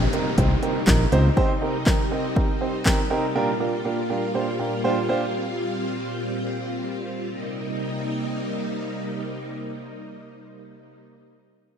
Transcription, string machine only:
Already playing: C3 G3 A#3 D#4
1.37 C4
3.35 A#2 A#3 F4
5.34 C4
7.32 C3 G3 A#3 D#4

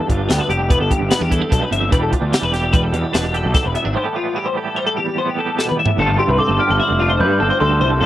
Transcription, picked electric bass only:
0.09 G1
0.29 D2
0.49 F1
0.80 G1
1.01 G1
1.21 E2
1.52 B1
1.71 G1
1.92 E1
2.22 D2
2.42 E1
2.73 E1
2.93 E2
3.14 E1
3.45 B1
3.66 E1
3.85 G#1
5.98 G1
6.28 C2
6.49 G1
6.70 G1
6.90 F1
7.20 G2
7.41 G1
7.61 D2
7.81 C2
8.01 F1

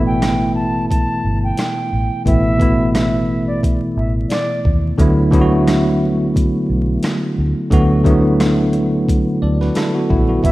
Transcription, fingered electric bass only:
Already playing: A1
1.24 G1
1.93 A1
2.26 A1
3.97 A1
4.65 D#2
4.99 D2
6.70 B1
7.38 D2
7.71 D2
9.43 D2
10.11 A#1
10.44 A1

